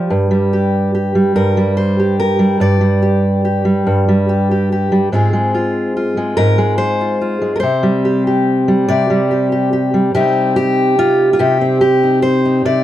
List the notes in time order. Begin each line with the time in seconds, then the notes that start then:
Already playing: F3 G3 G4
0.10 G2
0.31 G3
0.53 G4
0.95 G4
1.15 G3
1.36 G2 A#4
1.57 G3
1.77 C5
1.99 G4
2.20 A#4
2.39 G3
2.60 G2 D5
2.81 G3
3.02 G4
3.45 G4
3.65 G3
3.87 G2
4.08 G3
4.29 G4
4.51 G4
4.72 G4
4.92 G3
5.12 G#2 G#3 C4 F4 G#4
5.33 G#3
5.55 F4
5.97 F4
6.17 G#3
6.37 G#2 A#4
6.58 G#3
6.78 C5
7.01 F4
7.21 F4
7.42 G#3
7.56 A#4
7.60 C3 C5
7.83 G3
8.05 G4
8.27 G4
8.68 G3
8.88 C3 D5
9.10 G3
9.31 G4
9.52 G4
9.73 G4
9.94 G3
10.14 C3 G3 C4 D#4 G4
10.56 G4
10.99 F4
11.33 F4
11.39 C3 G4
11.61 C4
11.81 G4
12.03 D#4
12.22 C5
12.45 D#4
12.65 C3 D5